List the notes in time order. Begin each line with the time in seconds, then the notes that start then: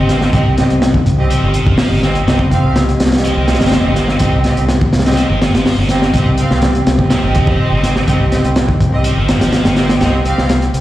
Already playing: C4 G4 D#5
0.00 G1
0.09 A#3, snare, closed hi-hat
0.21 snare
0.33 C2 C3 C4 G4 D#5, kick, closed hi-hat
0.58 C4 G4 D#5, snare, closed hi-hat
0.70 C2, closed hi-hat
0.82 snare, closed hi-hat
0.94 kick
1.06 C2, kick, closed hi-hat
1.19 C4 G4 D#5
1.30 F3, closed hi-hat
1.43 G1 D#3
1.54 A#2, closed hi-hat
1.66 G1 F3, kick
1.78 snare, open hi-hat
1.92 G1 A#2
2.03 A#3 C4 G4 D#5, snare, closed hi-hat
2.15 closed hi-hat
2.27 C2 C3 C4 G4 D#5, snare, closed hi-hat
2.39 kick
2.51 C4 G4 F5, kick, closed hi-hat
2.64 C2
2.76 snare, closed hi-hat
2.89 closed hi-hat
3.00 C2, snare, closed hi-hat
3.05 snare, closed hi-hat
3.12 C4 G4 D#5, snare, closed hi-hat
3.18 snare, closed hi-hat
3.24 F3, closed hi-hat
3.37 C2 D#3
3.48 A#2, snare, closed hi-hat
3.54 snare, closed hi-hat
3.61 G1 F3, snare, closed hi-hat
3.66 snare, closed hi-hat
3.72 snare, closed hi-hat
3.85 G1 A#2
3.96 A#3, snare, closed hi-hat
4.08 snare
4.19 C2 C3 C4 G4 D#5 G5, kick, closed hi-hat
4.44 C4 G4 D#5, snare, closed hi-hat
4.57 C2, closed hi-hat
4.69 snare, closed hi-hat
4.81 kick
4.93 C2, snare, closed hi-hat
4.99 snare, closed hi-hat
5.06 C4 G4 D#5, snare, closed hi-hat
5.11 snare, closed hi-hat
5.17 F3, closed hi-hat
5.30 G1 D#3
5.42 A#2, snare, closed hi-hat
5.54 G1 F3, snare, closed hi-hat
5.66 snare, open hi-hat
5.78 G1 A#2
5.89 A#3 C4 G4 D#5, snare, closed hi-hat
6.02 snare
6.14 C2 C3 C4 G4 D#5, kick, closed hi-hat
6.38 C4 G4 F5, closed hi-hat
6.51 C2, snare
6.62 snare, closed hi-hat
6.75 closed hi-hat
6.86 C2, snare, closed hi-hat
6.99 C4 G4 D#5, kick
7.10 F3, snare, closed hi-hat
7.24 G1 D#3
7.34 A#2, kick, closed hi-hat
7.47 G1 F3, kick
7.72 G1 A#2
7.83 A#3, snare, closed hi-hat
7.96 snare
8.07 C2 C3 C4 G4 D#5, kick, closed hi-hat
8.31 C4 G4 D#5, snare, closed hi-hat
8.44 C2, closed hi-hat
8.56 snare, closed hi-hat
8.68 kick
8.80 C2, kick, closed hi-hat
8.92 C4 G4 D#5
9.04 F3, closed hi-hat
9.17 G1 D#3
9.28 A#2, snare, closed hi-hat
9.41 G1 F3, snare, closed hi-hat
9.53 snare, closed hi-hat
9.65 G1 A#2, snare, closed hi-hat
9.77 A#3 C4 G4 D#5, snare, closed hi-hat
9.89 snare, closed hi-hat
10.01 C2 C3 C4 G4 D#5, snare, closed hi-hat
10.25 C4 G4 F5, closed hi-hat
10.38 C2, snare
10.49 snare, closed hi-hat
10.62 closed hi-hat
10.74 C2, closed hi-hat